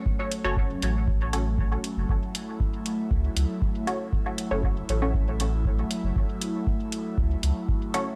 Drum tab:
HH |-x-x-x-x|-x-x-x-x|-x-x-x-x|-x-x-x-x|
BD |o-o-o-o-|o-o-o-o-|o-o-o-o-|o-o-o-o-|